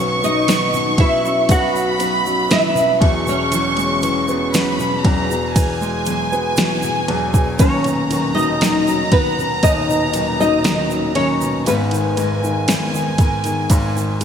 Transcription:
Already playing: B1 B2 F#3 B3 C#4 D#4 B4 C#5 C#6
0.21 F#3 C#4 D#4 B4 D#5, shaker
0.47 B2 D#3 F#3 B3 C#4 D#4 B4, snare, ride, shaker
0.74 B2, shaker
0.97 F#3 B3 C#4 D#4 E4 B4 E5, kick, ride
1.23 F#3 C#4 D#4 B4, shaker
1.48 B1 B2 F#4 F#5 B5, kick, ride, shaker
1.74 F#3, shaker
1.99 F#3 B3 C#4 D#4 B4, ride, shaker
2.24 F#3 C#4 D#4 B4, shaker
2.49 B2 D#3 F#3 B3 C#4 D#4 E4 B4 E5, snare, ride, shaker
2.75 B2 F#3 C#4 D#4 B4, shaker
3.01 E1 E2 F#3 B3 F#4 G#4 C#6, kick, ride
3.26 B2 C#4 C#5, shaker
3.51 E3 F#3 B3 F#4 G#4, ride, shaker
3.77 G#3, ride, shaker
4.02 E3 F#3 B3 F#4 G#4, ride, shaker
4.28 B3 F#4 G#4, shaker
4.54 E3 F#3 B3 F#4 G#4 B5, snare, ride, shaker
4.79 B2, shaker
5.04 E1 E2 F#3 B3 F#4 G#4 A#5, kick, ride
5.30 B2 B3 F#4 G#4, shaker
5.55 E3 G#5, kick, ride, shaker
5.81 G#3, shaker
6.06 E3 F#3 B3 F#4 G#4, ride, shaker
6.32 B3 F#4 G#4, shaker
6.57 E3 F#3 B3 F#4 G#4, snare, ride, shaker
6.83 B2 B3 F#4 G#4, shaker
7.08 E1 E2 F#3 B3 F#4 G#4, ride
7.34 B2, kick, shaker
7.59 D#1 D#2 D#3 F#3 C#4 D#4 B4 C#5 A#5, kick, ride, shaker
7.84 B2, ride, shaker
8.10 D#3 F#3 C#4 D#4 B4, ride, shaker
8.35 F#3 C#4 D#4 B4 D#5, shaker
8.61 D#3 F#3 C#4 D#4 B4, snare, ride, shaker
8.87 F#3, shaker
9.12 D#3 F#3 B3 C#4 D#4 B4, kick, ride
9.37 B2 C#4 D#4 B4, shaker
9.63 D#1 D#2 D#4 D#5, kick, ride, shaker
9.89 B2, shaker
10.13 D#3 F#3 C#4 D#4 B4, ride, shaker
10.39 F#3 C#4 D#4 B4 D#5, shaker
10.64 D#3 F#3 C#4 D#4 B4, snare, ride, shaker
10.90 F#3 C#4 D#4 B4, shaker
11.15 D#3 F#3 C#4 D#4 B4 C#5, ride
11.41 B2, shaker
11.66 G#1 G#2 D#3 G#3 B3 D#4 B4 G#5, ride, shaker
11.91 D#3, ride, shaker
12.17 G#2 G#3 B3 D#4 A#4, ride, shaker
12.43 D#3 G#3 B3 D#4 A#4, shaker
12.68 G#2 D#3 G#3 B3 D#4, snare, ride, shaker
12.94 D#3, shaker
13.18 G#2 G#3 B3 D#4 A#4, kick, ride, shaker
13.44 D#3 G#3 B3 D#4, ride, shaker
13.70 G#1 G#2, kick, ride, shaker
13.96 D#3, shaker
14.21 G#2 G#3, ride, shaker

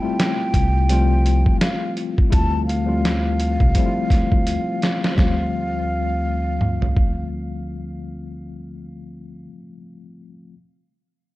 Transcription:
Already playing: G3 A3 C4 E4 F4 G5
0.02 G3 A3 C4 E4 F4
0.20 snare, closed hi-hat
0.54 C2, kick, closed hi-hat
0.89 F3 G3 A3 C4 F4, closed hi-hat
1.26 closed hi-hat
1.46 kick
1.61 F5, snare, closed hi-hat
1.97 closed hi-hat
2.18 kick
2.30 D2 G3 A3 C4 E4 F4 A5, kick, closed hi-hat
2.67 F5, closed hi-hat
2.86 F3 G3 A3 C4 F4
3.05 snare, closed hi-hat
3.40 closed hi-hat
3.60 C2, kick
3.75 F3 G3 A3, kick, closed hi-hat
3.79 C4 E4
3.86 F4
4.10 D2, kick, snare, closed hi-hat
4.32 kick
4.47 closed hi-hat
4.82 snare, closed hi-hat
5.04 snare
5.12 F3 G3
5.18 D2 A3 C4 F5, kick, snare
5.24 F4
6.61 mid tom
6.82 floor tom
6.97 kick

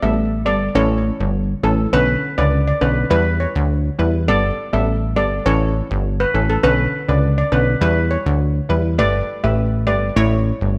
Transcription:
0.02 A1 G3 B3 A4 E5
0.45 G1 G3 B3 A4 D5
0.75 A1 E3 C#4 A4 C#5
1.20 G1
1.63 A1 E3 C#4 A4
1.93 B1 D3 C#4 B4
2.38 C#2 D3 C#4 B4 D5
2.68 D5
2.81 B1 D3 C#4 B4
3.10 E2 G3 E4 B4
3.40 C#5
3.56 D2
3.99 E2 G3 E4 B4
4.28 G1 G3 B3 A4 D5
4.73 A1 G3 B3 A4 E5
5.16 G1 G3 B3 A4 D5
5.46 A1 E3 C#4 A4 C#5
5.91 G1
6.20 B4
6.34 A1 E3 C#4 A4
6.50 A4
6.63 B1 D3 C#4 B4
7.08 C#2 D3 C#4 B4 D5
7.38 D5
7.52 B1 D3 C#4 B4
7.81 E2 G3 E4 B4
8.11 C#5
8.26 D2
8.69 E2 G3 E4 B4
8.98 G1 A3 G4 B4 D5
9.44 A1 A3 G4 B4 E5
9.87 G1 A3 G4 B4 D5
10.16 A1 A3 E4 C#5
10.61 G1

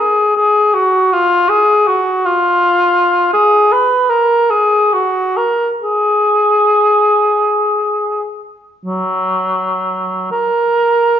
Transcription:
0.00 G#4
0.37 G#4
0.74 F#4
1.13 F4
1.49 G#4
1.87 F#4
2.25 F4
3.33 G#4
3.72 B4
4.10 A#4
4.50 G#4
4.93 F#4
5.37 A#4
5.83 G#4
8.85 F#3
10.31 A#4

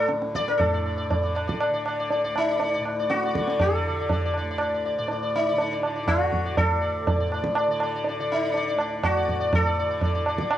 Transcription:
Already playing: D2 A2 D3
0.09 D3, tabla te
0.22 tabla te
0.35 D5, tabla ke
0.48 A#4, tabla te
0.58 A2 A4 D5, tabla tin, tabla ge
0.74 D5
0.86 D5
0.97 D5
1.10 D5, tabla tin, tabla ge
1.14 D3
1.23 D5
1.34 D5, tabla na
1.47 D5, tabla ke
1.60 D5, tabla na
1.70 D3 D5
1.86 D5, tabla na
1.99 D5
2.10 D5, tabla tin
2.24 D2 D5
2.36 D#4, tabla na
2.50 D5
2.60 D5, tabla tin
2.74 D5
2.79 A2
2.85 tabla na
2.99 D5
3.10 F#4, tabla te
3.23 D5, tabla te
3.35 D3 D5, tabla ke
3.48 D5, tabla te
3.60 A4, tabla tin, tabla ge
3.75 D5
3.87 D3 D5
4.00 D5
4.10 D5, tabla tin, tabla ge
4.25 D5
4.34 D5, tabla na
4.42 D2
4.51 D5
4.58 D5, tabla na
4.74 D5
4.85 D5
4.98 A2 D5
5.08 D5, tabla tin
5.23 D5
5.36 D#4
5.49 D3 D5
5.58 D5, tabla tin
5.73 D5
5.83 D5, tabla na
5.96 D5
6.06 D3 F#4, tabla na, tabla ge
6.33 tabla ge
6.45 D5
6.57 D2 A4, tabla tin, tabla ge
6.81 D5
7.07 D5, tabla tin, tabla ge
7.16 A2
7.20 D5
7.32 D5, tabla na
7.44 tabla ke
7.55 D5, tabla na
7.68 D3 D5
7.80 D5, tabla na
7.96 D5
8.04 tabla tin
8.09 D5
8.20 D3 D5
8.32 D#4
8.44 D5
8.54 D5, tabla tin
8.68 D5
8.76 D2, tabla na
8.80 D5
9.03 F#4, tabla na, tabla ge
9.17 D5
9.28 A2 D5, tabla ge
9.40 D5
9.53 A4, tabla tin, tabla ge
9.66 D5
9.79 D3 D5
9.90 D5
10.01 D5, tabla tin, tabla ge
10.15 D5
10.26 D5, tabla na
10.36 D3 D5, tabla ke
10.51 D5, tabla na

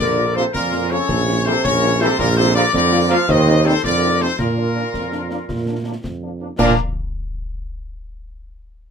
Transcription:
0.00 A#1 D3 A#4 D5
0.18 F3 A#3 F4
0.35 C3 F3 A#3 F4 A4 C5
0.53 F2 A#2 F4 A#4, concert bass drum, snare
0.73 F3 A#3 F4, snare
0.90 C#3 F3 A#3 F4 A4 C#5, snare
1.09 A#1, concert bass drum, snare
1.27 G3 A#3 E4, snare
1.45 C3 E3 G3 A#3 E4 A4 C5, snare
1.64 A#1 C#3 A#4 C#5, concert bass drum, snare
1.83 G3 A#3 E4
2.00 C3 E3 G3 A#3 E4 A4 C5, snare
2.19 A#1 A#2 F4 A#4, concert bass drum, snare, crash
2.37 C3 F3 A#3 F4 A4 C5
2.55 D3 F3 A#3 F4 A#4 D5
2.73 F2 D3 A#4 D5, concert bass drum, snare
2.92 F3 A#3 F4, snare
3.09 F3 A#3 F4 D5 F5, snare
3.28 D#2 D#3 C5 D#5, concert bass drum, snare
3.46 G3 C4 D#4, snare
3.65 C3 G3 C4 D#4 A4 C5, snare
3.83 F2 D3 A#4 D5, concert bass drum, snare
4.02 A3 C4 D#4
4.20 C3 A3 C4 D#4 A4 C5, snare
4.38 A#2 F4 A#4, concert bass drum, snare, crash
4.57 F3 A#3 D4
4.74 F3 A#3 D4
4.94 F2, concert bass drum, snare
5.12 F3 A#3 D4, snare
5.29 F3 A#3 D4, snare
5.49 A#2, concert bass drum, snare
5.66 F3 A#3 D4
5.85 F3 A#3 D4
6.04 F2, concert bass drum, snare
6.23 F3 A#3 D4
6.40 F3 A#3 D4
6.58 A#2 F3 A#3 D4 A#4 A#5, concert bass drum, snare, crash

